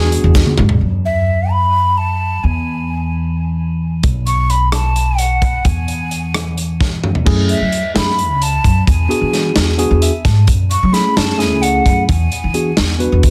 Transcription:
0.00 0.15 E2 medium
0.00 0.53 B3 medium
0.00 0.53 D4 medium
0.00 0.54 F#4 medium
0.00 0.54 G#4 loud
0.00 0.54 G#4 medium
0.12 closed hi-hat medium
0.12 shaker soft
0.24 0.42 E2 medium
0.35 kick loud
0.35 snare medium
0.35 shaker soft
0.46 high tom medium
0.58 0.76 G#2 medium
0.58 mid tom medium
0.69 floor tom medium
0.81 2.39 F#2 medium
1.05 1.52 E5 medium
1.51 1.99 B5 medium
1.97 2.45 A5 medium
2.43 4.01 E2 medium
2.43 3.12 G#5 medium
4.03 5.62 B1 medium
4.03 kick medium
4.03 closed hi-hat medium
4.27 4.51 C#6 medium
4.27 closed hi-hat soft
4.50 4.72 B5 medium
4.50 closed hi-hat soft
4.72 5.20 A5 medium
4.72 cross-stick medium
4.72 closed hi-hat medium
4.96 closed hi-hat soft
5.18 5.66 F#5 medium
5.18 closed hi-hat medium
5.42 kick medium
5.42 closed hi-hat soft
5.65 7.23 E2 medium
5.65 6.57 G#5 medium
5.65 kick medium
5.65 closed hi-hat medium
5.88 closed hi-hat soft
6.11 closed hi-hat soft
6.34 cross-stick medium
6.34 closed hi-hat medium
6.58 closed hi-hat soft
6.81 kick medium
6.81 snare soft
7.04 mid tom medium
7.15 floor tom medium
7.26 7.53 F#2 medium
7.26 7.58 A3 medium
7.26 7.58 C#4 medium
7.26 7.58 E4 medium
7.26 7.59 G#4 medium
7.26 kick medium
7.26 crash medium
7.49 7.92 E5 medium
7.49 closed hi-hat medium
7.60 7.78 F#3 medium
7.72 closed hi-hat soft
7.94 8.30 F#2 medium
7.94 8.11 A3 medium
7.94 8.11 C#4 soft
7.94 8.11 E4 soft
7.94 8.11 G#4 medium
7.94 8.44 B5 medium
7.94 snare loud
7.94 closed hi-hat medium
8.19 closed hi-hat soft
8.30 8.57 C#2 medium
8.42 8.88 A5 medium
8.42 closed hi-hat medium
8.64 8.82 F#2 medium
8.64 kick medium
8.64 closed hi-hat medium
8.87 9.05 E2 medium
8.87 9.53 G#5 medium
8.87 kick loud
8.87 closed hi-hat medium
9.09 9.74 B3 medium
9.09 9.74 D4 medium
9.09 9.74 F#4 medium
9.09 9.75 G#4 medium
9.09 closed hi-hat medium
9.21 9.48 E3 medium
9.33 snare soft
9.33 closed hi-hat medium
9.56 9.82 E2 medium
9.56 snare loud
9.56 closed hi-hat medium
9.78 10.11 B3 medium
9.78 10.11 D4 medium
9.78 10.11 F#4 medium
9.78 10.11 G#4 medium
9.78 closed hi-hat medium
9.91 10.08 E2 medium
10.02 10.24 E5 medium
10.02 closed hi-hat medium
10.25 10.48 G#2 medium
10.25 10.46 A5 medium
10.25 kick medium
10.25 snare soft
10.25 closed hi-hat medium
10.47 10.74 F#2 medium
10.47 kick loud
10.47 closed hi-hat medium
10.71 10.94 C#6 medium
10.71 closed hi-hat medium
10.83 11.00 F#3 medium
10.92 11.36 A3 medium
10.92 11.37 C#4 medium
10.92 11.37 E4 medium
10.92 11.38 G#4 medium
10.92 11.18 B5 medium
10.92 snare soft
10.92 closed hi-hat medium
11.16 11.51 F#2 medium
11.16 11.40 A5 medium
11.16 snare medium
11.16 closed hi-hat medium
11.38 12.03 A3 medium
11.38 12.04 C#4 medium
11.38 12.04 E4 medium
11.38 12.04 G#4 medium
11.38 11.63 G#5 medium
11.38 snare soft
11.38 closed hi-hat medium
11.51 11.78 C#2 medium
11.61 12.07 F#5 medium
11.61 closed hi-hat medium
11.86 12.04 F#2 medium
11.86 kick medium
11.86 closed hi-hat medium
12.07 12.26 E2 loud
12.07 12.96 G#5 medium
12.07 kick medium
12.07 closed hi-hat medium
12.32 closed hi-hat medium
12.44 12.70 E3 medium
12.54 12.70 B3 medium
12.54 12.70 D4 soft
12.54 12.70 F#4 medium
12.54 12.71 G#4 medium
12.54 closed hi-hat soft
12.77 13.04 E2 medium
12.77 snare loud
12.77 closed hi-hat medium
12.99 13.30 B3 medium
12.99 13.30 D4 medium
12.99 13.30 F#4 medium
12.99 13.30 B4 medium
12.99 closed hi-hat soft
13.12 13.30 E2 medium
13.23 kick medium
13.23 closed hi-hat medium

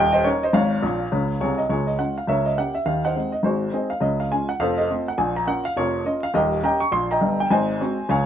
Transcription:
0.00 0.19 D#1 medium
0.00 0.20 D#2 medium
0.00 0.11 D#5 medium
0.00 0.13 G5 loud
0.12 0.24 C5 medium
0.12 0.25 D#5 medium
0.24 0.41 A#3 soft
0.24 0.41 C#4 soft
0.24 0.41 D#4 medium
0.24 0.42 A#4 medium
0.24 0.42 C#5 medium
0.43 0.55 C5 medium
0.43 0.55 D#5 medium
0.53 0.78 G#1 medium
0.53 0.78 G#2 medium
0.53 1.40 C#5 medium
0.53 1.59 F5 medium
0.82 1.04 A#1 medium
0.82 1.04 A#2 medium
1.12 1.34 C#2 medium
1.12 1.34 C#3 medium
1.40 1.62 C2 medium
1.40 1.62 C3 medium
1.40 1.58 G#4 soft
1.40 1.59 C#5 medium
1.58 1.70 D#5 medium
1.69 1.94 C#2 medium
1.69 1.94 C#3 medium
1.69 1.87 F4 medium
1.69 1.87 G#4 medium
1.69 1.88 C#5 medium
1.87 1.99 D#5 medium
1.98 2.15 G#3 soft
1.98 2.15 C#4 soft
1.98 2.15 F4 soft
1.98 2.16 F#5 medium
2.18 2.29 F5 medium
2.27 2.52 C#2 medium
2.27 2.53 C#3 medium
2.27 2.45 A#4 medium
2.27 2.45 C#5 medium
2.27 2.46 E5 medium
2.46 2.57 D#5 medium
2.57 2.73 A#3 soft
2.57 2.73 C#4 soft
2.57 2.74 G4 soft
2.57 2.75 F#5 medium
2.75 2.86 E5 medium
2.85 3.10 D#2 medium
2.85 3.10 D#3 medium
2.85 3.03 F5 medium
3.05 3.32 C5 soft
3.05 3.31 D#5 soft
3.05 3.33 F#5 medium
3.15 3.31 G#3 soft
3.15 3.31 C4 soft
3.15 3.32 D#4 soft
3.32 3.44 D#5 medium
3.43 3.68 G#1 medium
3.43 3.68 G#2 medium
3.43 3.72 F#4 medium
3.43 3.72 G#4 medium
3.43 3.72 C5 medium
3.72 3.88 G#3 soft
3.72 3.89 C4 soft
3.72 3.89 D#4 soft
3.72 3.90 G#4 soft
3.72 3.90 C5 soft
3.72 3.91 D#5 medium
3.90 4.02 F5 medium
4.00 4.26 C#2 medium
4.00 4.26 C#3 medium
4.00 4.19 D#5 medium
4.20 4.31 F5 medium
4.31 4.47 G#3 soft
4.31 4.47 C#4 soft
4.31 4.47 F4 soft
4.31 4.49 G#5 medium
4.49 4.60 F#5 medium
4.59 4.84 F1 medium
4.59 4.85 F2 medium
4.59 4.77 A4 medium
4.59 4.77 C5 medium
4.59 4.78 F5 medium
4.77 5.05 A4 soft
4.77 5.05 C5 soft
4.77 5.07 D#5 medium
4.90 5.06 A3 soft
4.90 5.06 C4 soft
4.90 5.07 F4 soft
5.08 5.19 F#5 medium
5.18 5.43 A#1 medium
5.18 5.43 A#2 medium
5.18 5.35 G#5 medium
5.36 5.48 A#5 medium
5.47 5.63 A#3 soft
5.47 5.63 C#4 soft
5.47 5.63 F4 soft
5.47 5.65 F#5 medium
5.65 5.76 F5 medium
5.77 6.01 F1 medium
5.77 6.01 F2 medium
5.77 6.04 F4 medium
5.77 6.05 A#4 medium
5.77 6.06 C#5 medium
6.05 6.21 A#3 soft
6.05 6.21 C#4 soft
6.05 6.22 F4 soft
6.05 6.23 D#5 medium
6.23 6.35 F5 medium
6.34 6.59 D#1 medium
6.34 6.59 D#2 medium
6.34 6.62 G4 medium
6.34 6.62 A#4 medium
6.34 6.63 D#5 medium
6.63 6.79 A#3 soft
6.63 6.79 C#4 soft
6.63 6.80 G4 soft
6.63 6.80 D#5 medium
6.63 6.80 G5 medium
6.63 6.81 A#5 medium
6.80 6.92 C#6 medium
6.91 7.17 A#1 medium
6.91 7.17 A#2 medium
6.91 7.10 C6 medium
7.11 7.38 D#5 medium
7.11 7.38 G5 medium
7.11 7.39 A#5 medium
7.21 7.44 G1 medium
7.21 7.44 G2 medium
7.40 7.51 G5 medium
7.51 7.75 G#1 medium
7.51 7.75 G#2 medium
7.51 8.06 C5 medium
7.51 8.05 D#5 medium
7.51 8.08 G#5 medium
7.80 7.96 G#3 soft
7.80 7.97 C4 soft
7.80 7.97 F#4 medium
8.09 8.26 C#2 medium
8.09 8.26 C#3 medium
8.09 8.26 C#5 medium
8.09 8.26 F5 medium
8.09 8.26 G#5 medium

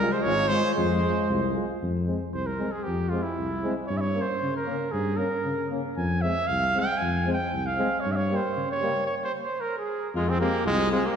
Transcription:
0.00 0.14 G3 medium
0.00 0.10 G#3 medium
0.00 0.14 A#4 loud
0.12 0.24 G#3 medium
0.12 0.24 C5 medium
0.22 0.54 G#1 loud
0.22 0.49 G#3 medium
0.22 0.36 G#3 medium
0.22 0.35 F4 medium
0.22 0.49 C#5 loud
0.48 0.74 G#3 medium
0.48 0.62 G#3 medium
0.48 0.62 F4 medium
0.48 0.74 C5 loud
0.74 1.06 F2 loud
0.74 1.50 G#3 medium
0.74 0.87 G#3 medium
0.74 0.88 F4 medium
0.74 1.50 C5 medium
1.03 1.13 G#3 medium
1.03 1.14 F4 medium
1.29 1.58 C2 medium
1.29 1.40 G#3 medium
1.29 1.40 F4 medium
1.54 1.65 G#3 medium
1.54 1.66 F4 medium
1.82 2.11 F2 medium
2.07 2.18 G#3 soft
2.07 2.18 C4 medium
2.34 2.62 C2 medium
2.34 2.48 C5 medium
2.46 2.73 A#4 medium
2.59 2.69 G#3 medium
2.59 2.69 C4 medium
2.72 2.85 G#4 medium
2.83 3.15 F2 medium
2.83 3.11 G4 medium
3.09 3.22 G#3 medium
3.09 3.23 C4 medium
3.09 3.24 F4 medium
3.22 3.76 E4 medium
3.39 3.67 C2 medium
3.64 3.74 G#3 medium
3.64 3.74 C4 medium
3.87 4.19 G2 medium
3.87 3.99 C#5 medium
3.97 4.23 C#5 medium
3.97 4.02 E5 medium
4.14 4.25 A#3 medium
4.14 4.26 C#4 medium
4.21 4.56 C5 medium
4.43 4.71 C#3 medium
4.56 4.93 A#4 medium
4.66 4.77 A#3 medium
4.66 4.77 C#4 medium
4.92 5.22 G2 medium
4.92 5.19 G#4 medium
5.17 5.28 A#3 medium
5.17 5.29 C#4 medium
5.17 5.70 A#4 medium
5.45 5.74 C#3 medium
5.70 5.81 A#3 medium
5.70 5.81 C#4 medium
5.97 6.26 F2 medium
5.97 6.23 G#5 medium
6.22 6.33 G#3 medium
6.22 6.33 C4 medium
6.22 6.49 E5 loud
6.47 6.78 C2 medium
6.47 6.81 F5 loud
6.74 6.86 G#3 medium
6.74 6.84 C4 medium
6.79 6.99 G5 loud
6.98 7.33 G#5 medium
7.02 7.30 F2 medium
7.26 7.37 G#3 medium
7.26 7.37 C4 medium
7.33 7.68 G5 medium
7.53 7.82 C2 medium
7.66 8.02 F5 medium
7.78 7.88 G#3 medium
7.78 7.88 C4 medium
8.01 8.13 C#5 medium
8.06 8.34 G2 medium
8.12 8.18 E5 medium
8.16 8.37 C#5 medium
8.31 8.41 G3 medium
8.31 8.42 A#3 medium
8.36 8.71 C5 medium
8.57 8.86 C#3 medium
8.71 9.05 C#5 medium
8.82 8.93 G3 medium
8.82 8.93 A#3 medium
9.06 9.15 C#5 medium
9.24 9.32 C5 medium
9.43 9.62 C5 medium
9.61 9.77 A#4 medium
9.78 10.10 G#4 medium
10.15 10.43 F2 medium
10.15 10.31 G#3 medium
10.15 10.31 F4 medium
10.29 10.40 C4 loud
10.29 10.39 G#4 medium
10.39 10.50 G#3 medium
10.39 10.64 A#3 loud
10.39 10.50 C4 medium
10.39 10.64 G4 medium
10.65 10.94 C2 loud
10.65 10.90 G#3 loud
10.65 10.89 F4 medium
10.91 11.01 G#3 medium
10.91 11.08 G#3 loud
10.91 11.02 C4 medium
10.91 11.07 F4 medium
11.06 11.16 A#3 medium
11.06 11.16 G4 medium

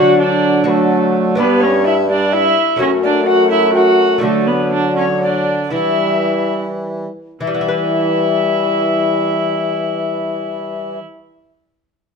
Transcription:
0.00 1.34 D3 medium
0.00 1.35 D3 medium
0.00 0.66 F#3 medium
0.00 0.63 D4 medium
0.00 0.18 F#4 loud
0.00 0.64 F#4 medium
0.00 0.21 F#5 loud
0.19 0.66 D4 medium
0.19 0.68 D5 loud
0.64 1.39 F#3 medium
0.64 1.41 A3 medium
0.64 1.34 D4 medium
0.64 1.35 F#4 medium
0.64 0.70 B4 loud
0.69 1.13 A4 loud
1.35 2.49 G2 medium
1.35 2.48 G2 medium
1.35 2.07 G3 medium
1.35 2.74 B3 medium
1.35 1.65 B3 loud
1.35 2.75 D4 medium
1.35 1.62 B4 loud
1.60 1.86 C#4 medium
1.60 1.86 C#5 loud
1.84 1.94 E4 medium
1.84 2.08 E5 loud
2.08 2.53 G3 medium
2.08 2.34 D4 medium
2.08 2.33 D5 loud
2.31 2.80 E4 loud
2.31 2.78 E5 loud
2.76 4.18 F#2 medium
2.76 4.16 A3 medium
2.76 4.18 A3 medium
2.76 4.17 C#4 medium
2.76 4.18 F#4 medium
2.76 2.85 C#5 loud
2.82 2.90 C#4 loud
3.03 3.26 D4 medium
3.03 3.27 D5 loud
3.26 3.50 F#4 loud
3.26 3.49 F#5 loud
3.50 3.73 E4 loud
3.50 3.73 E5 loud
3.73 4.21 F#4 loud
3.73 4.21 F#5 loud
3.73 3.78 G5 loud
4.18 5.69 D3 medium
4.18 5.69 F#3 medium
4.18 5.67 A3 medium
4.18 5.68 F#4 medium
4.18 4.48 A4 loud
4.23 5.69 D3 medium
4.23 4.48 A3 loud
4.46 4.71 B3 medium
4.46 4.72 B4 loud
4.71 4.96 D4 medium
4.71 4.95 D5 loud
4.96 5.04 C#4 medium
4.96 5.20 C#5 loud
5.22 5.71 D4 medium
5.22 5.72 D5 loud
5.70 7.07 E3 medium
5.70 7.09 E3 medium
5.70 7.09 G3 medium
5.70 7.36 B3 medium
5.70 7.36 E4 medium
5.70 6.52 E4 medium
5.70 6.53 E5 loud
7.41 10.97 E3 medium
7.41 10.99 E3 medium
7.41 10.99 G3 medium
7.41 11.00 E4 medium
7.41 10.98 E5 medium
7.47 11.04 G3 medium
7.54 11.11 B3 medium
7.61 11.18 E4 medium
7.68 11.25 B4 medium

